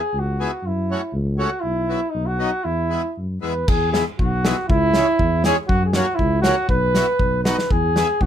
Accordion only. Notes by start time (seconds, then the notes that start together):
0.40 B3 E4 G#4
0.91 A3 C#4 F#4
1.38 A3 C#4 F#4
1.89 F#3 B3 E4
2.39 F#3 B3 D#4
2.90 G#3 B3 E4
3.41 G#3 B3 E4
3.93 G#3 B3 E4
4.45 G#3 B3 E4
4.96 G#3 C#4 E4
5.46 G#3 C#4 E4
5.95 A#3 C#4 F#4
6.44 A#3 C#4 F#4
6.96 B3 E4 F#4
7.45 B3 D#4 F#4
7.97 B3 E4 G#4